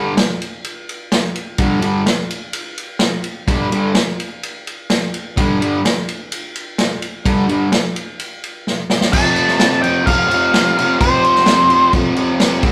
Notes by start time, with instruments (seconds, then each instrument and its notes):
Already playing: distorted electric guitar G2 D3 G3
0.17 snare, ride
0.42 ride
0.64 ride
0.89 ride
1.12 snare, ride
1.35 ride
1.58 distorted electric guitar G2 D3 G3, kick, ride
1.81 distorted electric guitar G2 D3 G3, ride
2.06 snare, ride
2.30 ride
2.53 ride
2.78 ride
2.99 snare, ride
3.24 ride
3.47 distorted electric guitar G2 D3 G3, kick, ride
3.71 distorted electric guitar G2 D3 G3, ride
3.95 snare, ride
4.20 ride
4.43 ride
4.67 ride
4.90 snare, ride
5.14 ride
5.37 distorted electric guitar G2 D3 G3, kick, ride
5.60 distorted electric guitar G2 D3 G3, ride
5.85 snare, ride
6.09 ride
6.32 ride
6.55 ride
6.78 snare, ride
7.02 ride
7.25 distorted electric guitar G2 D3 G3, kick, ride
7.48 distorted electric guitar G2 D3 G3, ride
7.72 snare, ride
7.96 ride
8.19 ride
8.44 ride
8.67 snare
8.90 snare
9.01 snare
9.12 distorted electric guitar F2 C3 F3, lead electric guitar A5, kick, crash
9.36 crash
9.48 snare
9.59 distorted electric guitar F2 C3 F3, snare, crash
9.81 distorted electric guitar C3 F3, lead electric guitar G5, crash
10.04 distorted electric guitar F2 C3 F3, lead electric guitar F5, kick, crash
10.28 distorted electric guitar C3 F3, crash
10.54 snare, crash
10.76 distorted electric guitar C3 F3, crash
10.98 distorted electric guitar F2 C3 F3, lead electric guitar C5, kick, crash
11.24 crash
11.35 snare
11.46 distorted electric guitar F2 C3, snare, crash
11.50 distorted electric guitar F3
11.69 distorted electric guitar C3 F3, crash
11.92 distorted electric guitar F2 C3 F3, kick, crash
12.15 distorted electric guitar C3 F3, crash
12.40 snare, crash
12.61 distorted electric guitar G3 C4, kick, crash
12.66 distorted electric guitar C3